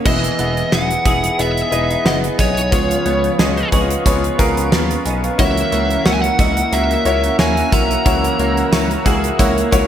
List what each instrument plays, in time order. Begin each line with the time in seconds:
Already playing: clean electric guitar A#3 C#4
0.05 analog synth bass E1, grand piano E3 B3 E4 G#4 D#5, clean electric guitar E3, analog synth pad G#4 G#5 D#6, lead electric guitar D#5, kick, crash
0.24 closed hi-hat
0.38 analog synth bass E1, grand piano B3 E4 G#4 F#5, clean electric guitar B3, closed hi-hat
0.57 closed hi-hat
0.72 analog synth bass E1, grand piano B3 E4 G#4 F#5, clean electric guitar D#4, lead electric guitar F#5, snare
0.91 closed hi-hat
1.05 analog synth bass E1, grand piano B3 E4 G#4 E5, clean electric guitar G#4, kick, closed hi-hat
1.24 closed hi-hat
1.38 analog synth bass E1, grand piano B3 E4 G#4 D#5, clean electric guitar B3, lead electric guitar E5, closed hi-hat
1.58 closed hi-hat
1.71 analog synth bass E1, grand piano B3 E4 G#4 D#5, clean electric guitar D#4, closed hi-hat
1.91 closed hi-hat
2.05 analog synth bass F#1, grand piano B3 E4 G#4 F#5, clean electric guitar B3, lead electric guitar D#5, snare
2.24 closed hi-hat
2.38 analog synth bass B1, grand piano B3 E4 G#4 D#5, clean electric guitar D#4, lead electric guitar C#5, kick, closed hi-hat
2.57 closed hi-hat
2.71 analog synth bass C#2, grand piano C#3 B3 F4 G#4 C#5, clean electric guitar F3, analog synth pad B4 F5 C#6, kick, closed hi-hat
2.91 closed hi-hat
3.05 analog synth bass C#2, grand piano B3 F4 G#4 C#5, clean electric guitar B3, closed hi-hat
3.24 closed hi-hat
3.38 analog synth bass C#2, grand piano B3 F4 G#4 D#5, clean electric guitar C#4, snare
3.57 closed hi-hat
3.72 analog synth bass C#2, grand piano B3 F4 G#4 C#5, clean electric guitar G#4, kick, closed hi-hat
3.90 closed hi-hat
4.05 analog synth bass C#2, grand piano B3 F4 G#4 C#5, clean electric guitar B3, kick, closed hi-hat
4.24 closed hi-hat
4.38 analog synth bass C#2, grand piano B3 F4 G#4 A#4, clean electric guitar C#4, kick, closed hi-hat
4.57 closed hi-hat
4.72 analog synth bass D#2, clean electric guitar B3, grand piano F5 B5, snare
4.91 closed hi-hat
5.06 analog synth bass B1, clean electric guitar C#4, grand piano D#5 G#5, closed hi-hat
5.24 grand piano B4 F5, closed hi-hat
5.38 analog synth bass C#2, grand piano C#3 A#3 E4 F#4 C#5, clean electric guitar E3, analog synth pad A#4 F#5 E6, lead electric guitar E5, kick, closed hi-hat
5.57 closed hi-hat
5.71 analog synth bass C#2, grand piano A#3 E4 F#4 C#5, clean electric guitar A#3, closed hi-hat
5.91 closed hi-hat
6.04 analog synth bass C#2, grand piano A#3 E4 F#4 C#5, clean electric guitar C#4, lead electric guitar F#5, snare
6.14 lead electric guitar G#5
6.22 lead electric guitar F#5, closed hi-hat
6.38 analog synth bass C#2, grand piano A#3 E4 F#4 D#5, clean electric guitar F#4, kick, closed hi-hat
6.57 closed hi-hat
6.72 analog synth bass C#2, grand piano A#3 E4 F#4 A#4, clean electric guitar A#3, lead electric guitar E5, closed hi-hat
6.91 closed hi-hat
7.05 analog synth bass C#2, grand piano A#3 E4 F#4 C#5, clean electric guitar C#4, closed hi-hat
7.24 closed hi-hat
7.38 analog synth bass D#2, grand piano A#3 E4 F#4 C#5, clean electric guitar A#3, lead electric guitar G#5, snare
7.57 closed hi-hat
7.72 analog synth bass B1, grand piano A#3 E4 F#4 E5, clean electric guitar C#4, lead electric guitar A#5, kick, closed hi-hat
7.91 closed hi-hat
8.05 analog synth bass C#2, grand piano C#3 A#3 E4 F#4 C#5, clean electric guitar E3, kick, closed hi-hat
8.24 closed hi-hat
8.39 analog synth bass C#2, grand piano A#3 E4 F#4 C#5, clean electric guitar A#3, closed hi-hat
8.57 closed hi-hat
8.72 analog synth bass C#2, grand piano A#3 E4 F#4 C#5, clean electric guitar C#4, snare, tambourine
8.91 closed hi-hat
9.05 analog synth bass C#2, grand piano A#3 E4 F#4 G#4, clean electric guitar F#4, kick, closed hi-hat
9.24 closed hi-hat
9.38 analog synth bass C#2, grand piano A#3 E4 F#4 C#5, clean electric guitar A#3, kick, closed hi-hat
9.58 closed hi-hat
9.71 analog synth bass C#2, grand piano A#3 E4 F#4 C#5, clean electric guitar C#4, kick, closed hi-hat